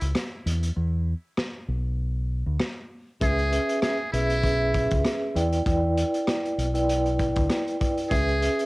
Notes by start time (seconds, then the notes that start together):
Already playing: E4
0.01 C#2, closed hi-hat
0.15 cross-stick, snare, closed hi-hat
0.46 E2, closed hi-hat
0.63 closed hi-hat
0.76 E2
1.37 cross-stick, snare
1.68 B1
2.46 D2
2.60 cross-stick, snare
3.20 C#2 C#4 G#4 B4 E5, kick, closed hi-hat
3.39 closed hi-hat
3.51 C#4 G#4 B4 E5, closed hi-hat
3.69 closed hi-hat
3.82 G#4, cross-stick, snare, closed hi-hat
4.12 B1 C#4 E4 G#4 B4 E5, closed hi-hat
4.30 closed hi-hat
4.44 C#4 G#4 B4 E5, kick, closed hi-hat
4.74 kick, closed hi-hat
4.91 C#2, kick, closed hi-hat
5.05 cross-stick, snare, closed hi-hat
5.35 E2 E4 B4 D5 G5, closed hi-hat
5.53 closed hi-hat
5.66 E2 E4 B4 D5 G5, kick, closed hi-hat
5.98 closed hi-hat
6.14 closed hi-hat
6.27 cross-stick, snare, closed hi-hat
6.45 closed hi-hat
6.58 B1, closed hi-hat
6.74 E4 B4 D5 G5, closed hi-hat
6.87 E4 B4 D5 G5, closed hi-hat
7.06 closed hi-hat
7.19 kick, closed hi-hat
7.36 D2, kick, closed hi-hat
7.50 cross-stick, snare, closed hi-hat
7.68 closed hi-hat
7.80 E4 B4 D5 G5, kick, closed hi-hat
7.98 closed hi-hat
8.10 C#2 C#4 G#4 B4 E5, kick, closed hi-hat
8.28 closed hi-hat
8.41 C#4 G#4 B4 E5, closed hi-hat
8.59 closed hi-hat